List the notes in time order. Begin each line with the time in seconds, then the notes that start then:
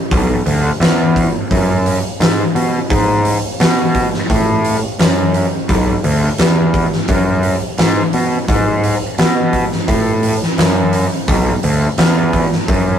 0.11 B1, kick, open hi-hat
0.46 D2, open hi-hat
0.80 E2, snare, open hi-hat
1.16 kick, open hi-hat
1.51 F#2, kick, open hi-hat
1.86 open hi-hat
2.20 G#2, snare, open hi-hat
2.55 B2, open hi-hat
2.90 G#2, kick, open hi-hat
3.25 open hi-hat
3.60 B2, snare, open hi-hat
3.95 kick, open hi-hat
4.14 snare
4.30 A2, kick, open hi-hat
4.65 open hi-hat
4.99 F#2, snare, open hi-hat
5.34 open hi-hat
5.69 B1, kick, open hi-hat
6.04 D2, open hi-hat
6.38 E2, snare, open hi-hat
6.74 kick, open hi-hat
6.92 snare
7.08 F#2, kick, open hi-hat
7.43 open hi-hat
7.78 G#2, snare, open hi-hat
8.13 B2, open hi-hat
8.48 G#2, kick, open hi-hat
8.84 open hi-hat
9.18 B2, snare, open hi-hat
9.53 kick, open hi-hat
9.72 snare
9.88 A2, kick, open hi-hat
10.23 open hi-hat
10.42 snare
10.58 F#2, snare, open hi-hat
10.93 open hi-hat
11.28 B1, kick, open hi-hat
11.63 D2, open hi-hat
11.98 E2, snare, open hi-hat
12.33 kick, open hi-hat
12.52 snare
12.68 F#2, kick, open hi-hat